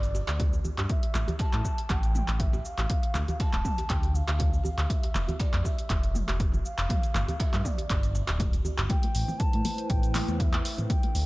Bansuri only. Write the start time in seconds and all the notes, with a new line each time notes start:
Already playing: D5
0.89 E5
1.40 A5
1.90 G5
2.40 E5
2.65 F5
3.40 A5
3.90 G5
4.16 F5
4.66 F5
4.90 E5
5.40 D5
5.65 E5
6.65 F5
7.40 E5
7.65 D5
8.90 G5
9.39 A5
9.89 G5
10.39 E5 F5
10.89 G5